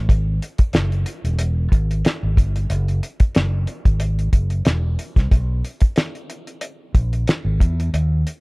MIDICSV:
0, 0, Header, 1, 3, 480
1, 0, Start_track
1, 0, Tempo, 654308
1, 62, Time_signature, 4, 2, 24, 8
1, 6164, End_track
2, 0, Start_track
2, 0, Title_t, "Fingered electric bass"
2, 0, Program_c, 0, 33
2, 67, Note_on_c, 0, 32, 90
2, 278, Note_off_c, 0, 32, 0
2, 540, Note_on_c, 0, 30, 75
2, 754, Note_off_c, 0, 30, 0
2, 912, Note_on_c, 0, 28, 78
2, 1223, Note_off_c, 0, 28, 0
2, 1261, Note_on_c, 0, 32, 80
2, 1475, Note_off_c, 0, 32, 0
2, 1635, Note_on_c, 0, 32, 81
2, 1741, Note_off_c, 0, 32, 0
2, 1741, Note_on_c, 0, 31, 76
2, 1955, Note_off_c, 0, 31, 0
2, 1981, Note_on_c, 0, 30, 83
2, 2195, Note_off_c, 0, 30, 0
2, 2464, Note_on_c, 0, 30, 70
2, 2676, Note_off_c, 0, 30, 0
2, 2831, Note_on_c, 0, 32, 67
2, 3142, Note_off_c, 0, 32, 0
2, 3174, Note_on_c, 0, 30, 77
2, 3391, Note_off_c, 0, 30, 0
2, 3417, Note_on_c, 0, 28, 73
2, 3632, Note_off_c, 0, 28, 0
2, 3789, Note_on_c, 0, 36, 68
2, 3888, Note_off_c, 0, 36, 0
2, 3902, Note_on_c, 0, 35, 92
2, 4115, Note_off_c, 0, 35, 0
2, 5096, Note_on_c, 0, 34, 72
2, 5310, Note_off_c, 0, 34, 0
2, 5463, Note_on_c, 0, 32, 73
2, 5564, Note_off_c, 0, 32, 0
2, 5579, Note_on_c, 0, 40, 83
2, 5792, Note_off_c, 0, 40, 0
2, 5821, Note_on_c, 0, 39, 88
2, 6033, Note_off_c, 0, 39, 0
2, 6164, End_track
3, 0, Start_track
3, 0, Title_t, "Drums"
3, 66, Note_on_c, 9, 36, 92
3, 70, Note_on_c, 9, 42, 61
3, 139, Note_off_c, 9, 36, 0
3, 143, Note_off_c, 9, 42, 0
3, 311, Note_on_c, 9, 42, 56
3, 385, Note_off_c, 9, 42, 0
3, 428, Note_on_c, 9, 42, 50
3, 433, Note_on_c, 9, 36, 74
3, 502, Note_off_c, 9, 42, 0
3, 507, Note_off_c, 9, 36, 0
3, 536, Note_on_c, 9, 42, 61
3, 548, Note_on_c, 9, 38, 96
3, 610, Note_off_c, 9, 42, 0
3, 622, Note_off_c, 9, 38, 0
3, 676, Note_on_c, 9, 42, 28
3, 750, Note_off_c, 9, 42, 0
3, 778, Note_on_c, 9, 42, 65
3, 851, Note_off_c, 9, 42, 0
3, 916, Note_on_c, 9, 42, 44
3, 989, Note_off_c, 9, 42, 0
3, 1017, Note_on_c, 9, 42, 76
3, 1090, Note_off_c, 9, 42, 0
3, 1261, Note_on_c, 9, 36, 74
3, 1265, Note_on_c, 9, 42, 60
3, 1334, Note_off_c, 9, 36, 0
3, 1339, Note_off_c, 9, 42, 0
3, 1399, Note_on_c, 9, 42, 39
3, 1473, Note_off_c, 9, 42, 0
3, 1502, Note_on_c, 9, 42, 76
3, 1513, Note_on_c, 9, 38, 81
3, 1575, Note_off_c, 9, 42, 0
3, 1586, Note_off_c, 9, 38, 0
3, 1740, Note_on_c, 9, 36, 72
3, 1746, Note_on_c, 9, 42, 56
3, 1814, Note_off_c, 9, 36, 0
3, 1820, Note_off_c, 9, 42, 0
3, 1876, Note_on_c, 9, 42, 43
3, 1949, Note_off_c, 9, 42, 0
3, 1980, Note_on_c, 9, 42, 64
3, 2053, Note_off_c, 9, 42, 0
3, 2116, Note_on_c, 9, 42, 29
3, 2189, Note_off_c, 9, 42, 0
3, 2223, Note_on_c, 9, 42, 53
3, 2297, Note_off_c, 9, 42, 0
3, 2346, Note_on_c, 9, 42, 48
3, 2349, Note_on_c, 9, 36, 70
3, 2419, Note_off_c, 9, 42, 0
3, 2423, Note_off_c, 9, 36, 0
3, 2455, Note_on_c, 9, 42, 61
3, 2467, Note_on_c, 9, 38, 96
3, 2529, Note_off_c, 9, 42, 0
3, 2540, Note_off_c, 9, 38, 0
3, 2695, Note_on_c, 9, 42, 60
3, 2768, Note_off_c, 9, 42, 0
3, 2827, Note_on_c, 9, 36, 71
3, 2828, Note_on_c, 9, 42, 43
3, 2901, Note_off_c, 9, 36, 0
3, 2901, Note_off_c, 9, 42, 0
3, 2933, Note_on_c, 9, 42, 72
3, 3006, Note_off_c, 9, 42, 0
3, 3072, Note_on_c, 9, 42, 32
3, 3145, Note_off_c, 9, 42, 0
3, 3175, Note_on_c, 9, 36, 72
3, 3175, Note_on_c, 9, 42, 61
3, 3249, Note_off_c, 9, 36, 0
3, 3249, Note_off_c, 9, 42, 0
3, 3303, Note_on_c, 9, 42, 39
3, 3376, Note_off_c, 9, 42, 0
3, 3412, Note_on_c, 9, 42, 78
3, 3423, Note_on_c, 9, 38, 85
3, 3486, Note_off_c, 9, 42, 0
3, 3496, Note_off_c, 9, 38, 0
3, 3660, Note_on_c, 9, 42, 56
3, 3734, Note_off_c, 9, 42, 0
3, 3788, Note_on_c, 9, 36, 72
3, 3791, Note_on_c, 9, 42, 42
3, 3797, Note_on_c, 9, 38, 30
3, 3861, Note_off_c, 9, 36, 0
3, 3864, Note_off_c, 9, 42, 0
3, 3870, Note_off_c, 9, 38, 0
3, 3899, Note_on_c, 9, 36, 88
3, 3900, Note_on_c, 9, 42, 59
3, 3972, Note_off_c, 9, 36, 0
3, 3973, Note_off_c, 9, 42, 0
3, 4142, Note_on_c, 9, 42, 53
3, 4215, Note_off_c, 9, 42, 0
3, 4259, Note_on_c, 9, 42, 49
3, 4267, Note_on_c, 9, 36, 72
3, 4332, Note_off_c, 9, 42, 0
3, 4340, Note_off_c, 9, 36, 0
3, 4372, Note_on_c, 9, 42, 64
3, 4384, Note_on_c, 9, 38, 88
3, 4446, Note_off_c, 9, 42, 0
3, 4458, Note_off_c, 9, 38, 0
3, 4512, Note_on_c, 9, 42, 27
3, 4586, Note_off_c, 9, 42, 0
3, 4619, Note_on_c, 9, 42, 59
3, 4693, Note_off_c, 9, 42, 0
3, 4748, Note_on_c, 9, 42, 41
3, 4822, Note_off_c, 9, 42, 0
3, 4850, Note_on_c, 9, 42, 77
3, 4923, Note_off_c, 9, 42, 0
3, 5095, Note_on_c, 9, 36, 74
3, 5096, Note_on_c, 9, 42, 60
3, 5169, Note_off_c, 9, 36, 0
3, 5169, Note_off_c, 9, 42, 0
3, 5230, Note_on_c, 9, 42, 39
3, 5303, Note_off_c, 9, 42, 0
3, 5337, Note_on_c, 9, 42, 76
3, 5348, Note_on_c, 9, 38, 83
3, 5410, Note_off_c, 9, 42, 0
3, 5421, Note_off_c, 9, 38, 0
3, 5578, Note_on_c, 9, 36, 71
3, 5585, Note_on_c, 9, 42, 58
3, 5651, Note_off_c, 9, 36, 0
3, 5658, Note_off_c, 9, 42, 0
3, 5720, Note_on_c, 9, 42, 43
3, 5794, Note_off_c, 9, 42, 0
3, 5824, Note_on_c, 9, 42, 64
3, 5897, Note_off_c, 9, 42, 0
3, 6065, Note_on_c, 9, 42, 53
3, 6138, Note_off_c, 9, 42, 0
3, 6164, End_track
0, 0, End_of_file